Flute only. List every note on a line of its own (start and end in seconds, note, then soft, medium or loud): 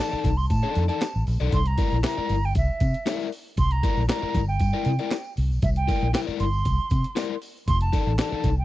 0.00 0.39 A5 loud
0.37 0.49 C6 loud
0.49 0.86 A5 loud
0.89 1.24 A5 medium
1.54 1.69 C6 loud
1.67 2.04 A#5 loud
2.05 2.47 A#5 medium
2.45 2.56 G5 loud
2.57 3.29 E5 medium
3.59 3.73 C6 loud
3.72 4.08 A#5 loud
4.09 4.45 A#5 loud
4.48 5.33 G5 medium
5.64 5.69 E5 medium
5.77 6.12 G5 loud
6.14 6.20 G5 medium
6.40 7.38 C6 medium
7.68 7.80 C6 loud
7.82 8.16 A5 loud
8.20 8.56 A5 medium
8.59 8.65 G5 medium